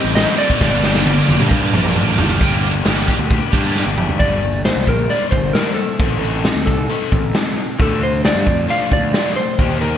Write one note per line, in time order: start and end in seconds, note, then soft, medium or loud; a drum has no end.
0.00 0.15 C3 medium
0.00 0.15 G3 medium
0.00 0.15 C4 loud
0.00 0.16 D#4 loud
0.00 0.18 G4 medium
0.00 0.12 D#5 loud
0.05 0.25 A1 medium
0.15 0.37 C3 medium
0.15 0.39 G3 medium
0.15 0.38 C4 medium
0.15 0.39 D#4 medium
0.15 0.40 G4 loud
0.15 0.38 D#5 medium
0.15 snare loud
0.15 open hi-hat medium
0.38 0.60 C3 medium
0.38 0.60 G3 medium
0.38 0.60 C4 medium
0.38 0.60 D#4 medium
0.38 0.63 G4 medium
0.38 1.91 D5 medium
0.50 kick medium
0.60 1.20 G1 loud
0.60 0.82 G2 medium
0.60 0.83 D3 loud
0.60 0.82 G3 medium
0.60 0.83 A#3 loud
0.60 0.83 D4 loud
0.60 0.84 G4 medium
0.60 kick loud
0.60 snare medium
0.83 1.05 G2 medium
0.83 1.05 D3 medium
0.83 1.05 G3 medium
0.83 1.06 A#3 medium
0.83 1.06 D4 medium
0.83 1.07 G4 loud
0.83 snare medium
0.95 snare medium
1.06 1.27 G2 medium
1.06 1.27 D3 medium
1.06 1.27 G3 medium
1.06 1.28 A#3 medium
1.06 1.28 D4 medium
1.06 1.29 G4 medium
1.06 high tom medium
1.28 1.39 F1 medium
1.28 1.49 G2 medium
1.28 1.50 D3 medium
1.28 1.50 G3 medium
1.28 1.50 A#3 medium
1.28 1.51 D4 medium
1.28 1.51 G4 medium
1.28 high tom medium
1.40 1.59 G2 medium
1.40 mid tom medium
1.51 1.71 G2 medium
1.51 1.72 D3 medium
1.51 1.72 G3 medium
1.51 1.73 A#3 medium
1.51 1.73 D4 loud
1.51 1.73 G4 loud
1.51 kick loud
1.51 mid tom medium
1.62 1.72 G2 medium
1.73 1.93 A#1 medium
1.73 1.94 G2 medium
1.73 1.95 D3 medium
1.73 1.95 G3 medium
1.73 1.96 A#3 medium
1.73 1.97 D4 loud
1.73 1.96 G4 loud
1.73 mid tom medium
1.85 mid tom medium
1.95 2.16 A1 medium
1.95 2.16 G2 medium
1.95 2.17 D3 medium
1.95 2.18 G3 medium
1.95 2.19 A#3 medium
1.95 2.19 D4 medium
1.95 2.19 G4 loud
1.95 mid tom medium
2.17 2.38 G1 medium
2.17 2.39 G2 medium
2.17 2.39 D3 medium
2.17 2.40 G3 medium
2.17 2.40 A#3 medium
2.17 2.40 D4 medium
2.17 2.40 G4 medium
2.17 floor tom loud
2.29 floor tom medium
2.40 2.80 G1 medium
2.40 2.70 G3 medium
2.40 2.84 A#3 medium
2.40 2.86 D4 medium
2.40 2.87 G4 medium
2.40 kick loud
2.40 open hi-hat medium
2.64 open hi-hat soft
2.85 3.05 G1 medium
2.85 3.14 G3 medium
2.85 3.29 A#3 medium
2.85 3.31 D4 medium
2.85 3.32 G4 medium
2.85 snare loud
2.85 open hi-hat medium
3.08 kick medium
3.08 open hi-hat soft
3.19 3.39 D2 medium
3.30 3.74 A#3 medium
3.30 3.55 D4 medium
3.30 3.52 G4 medium
3.30 kick loud
3.30 open hi-hat medium
3.53 3.82 G2 medium
3.53 3.82 G3 medium
3.53 3.82 A#3 medium
3.53 3.75 D4 medium
3.53 3.77 G4 medium
3.53 kick medium
3.53 open hi-hat soft
3.75 4.19 A#3 medium
3.75 3.98 D4 medium
3.75 3.96 G4 medium
3.75 snare soft
3.87 4.06 G1 medium
3.97 4.19 D4 medium
3.97 4.18 G4 medium
3.97 mid tom medium
4.09 floor tom medium
4.19 4.69 G1 medium
4.19 4.41 G3 medium
4.19 4.41 A#3 medium
4.19 4.41 D4 medium
4.19 4.61 D5 medium
4.19 kick loud
4.19 open hi-hat medium
4.42 4.63 G3 medium
4.42 4.63 A#3 medium
4.42 open hi-hat soft
4.65 4.85 G3 medium
4.65 4.85 A#3 medium
4.65 4.88 C5 medium
4.65 snare loud
4.65 open hi-hat medium
4.76 4.86 C2 medium
4.87 5.07 A#1 medium
4.87 5.08 G3 medium
4.87 5.08 A#3 medium
4.87 5.11 A#4 medium
4.87 kick medium
4.87 open hi-hat soft
5.09 5.31 G3 medium
5.09 5.31 A#3 medium
5.09 5.31 D4 medium
5.09 5.31 D5 medium
5.09 open hi-hat medium
5.31 5.52 G1 medium
5.31 5.53 G3 medium
5.31 5.53 A#3 medium
5.31 5.55 C5 medium
5.31 kick medium
5.31 open hi-hat medium
5.53 5.76 G3 medium
5.53 5.76 A#3 medium
5.53 5.76 D4 medium
5.53 5.74 A#4 medium
5.53 snare loud
5.53 open hi-hat medium
5.75 5.97 G3 medium
5.75 5.98 A#3 medium
5.75 6.65 A4 medium
5.75 open hi-hat soft
6.00 6.49 A1 medium
6.00 6.20 C4 medium
6.00 6.20 D#4 medium
6.00 6.21 A4 medium
6.00 kick loud
6.00 open hi-hat medium
6.21 6.42 C4 medium
6.21 6.43 D#4 medium
6.21 6.43 A4 medium
6.21 open hi-hat soft
6.43 6.64 C4 medium
6.43 6.64 D#4 medium
6.43 snare loud
6.43 open hi-hat medium
6.56 6.66 D2 medium
6.66 6.87 C2 loud
6.66 6.87 C4 medium
6.66 6.87 D#4 medium
6.66 7.52 A4 medium
6.66 kick medium
6.66 open hi-hat soft
6.89 7.11 C4 medium
6.89 7.11 D#4 medium
6.89 7.11 A4 medium
6.89 open hi-hat medium
7.12 7.32 A1 medium
7.12 7.32 C4 medium
7.12 7.32 D#4 medium
7.12 kick medium
7.12 open hi-hat soft
7.34 7.55 C4 medium
7.34 7.55 D#4 medium
7.34 snare loud
7.34 open hi-hat medium
7.57 7.77 C4 medium
7.57 7.78 D#4 medium
7.57 open hi-hat soft
7.79 8.29 D2 medium
7.79 8.00 F3 medium
7.79 8.00 A3 medium
7.79 8.01 D4 medium
7.79 8.02 A4 medium
7.79 kick loud
7.79 open hi-hat medium
8.02 8.22 F3 medium
8.02 8.22 A3 medium
8.02 8.25 C5 medium
8.02 open hi-hat soft
8.23 8.44 F3 medium
8.23 8.44 A3 medium
8.23 8.67 D5 medium
8.23 snare loud
8.23 open hi-hat medium
8.35 8.45 G2 medium
8.46 8.67 F2 medium
8.46 8.67 F3 medium
8.46 8.67 A3 medium
8.46 kick medium
8.46 open hi-hat soft
8.68 8.90 F3 medium
8.68 8.90 A3 medium
8.68 8.90 D4 medium
8.68 8.93 F5 loud
8.68 open hi-hat medium
8.91 9.11 D2 medium
8.91 9.12 F3 medium
8.91 9.12 A3 medium
8.91 9.36 D5 medium
8.91 kick medium
8.91 open hi-hat medium
9.14 9.36 F3 medium
9.14 9.36 A3 medium
9.14 9.36 D4 medium
9.14 snare loud
9.14 open hi-hat medium
9.36 9.57 F3 medium
9.36 9.57 A3 medium
9.36 9.81 C5 loud
9.36 open hi-hat medium
9.59 9.98 D#2 medium
9.59 9.80 A#3 medium
9.59 9.81 D#4 medium
9.59 9.81 G4 medium
9.59 kick loud
9.59 open hi-hat medium
9.70 snare soft
9.81 9.98 A#3 medium
9.81 9.98 D#4 medium
9.81 9.98 G4 medium
9.81 9.98 A#4 medium
9.81 open hi-hat soft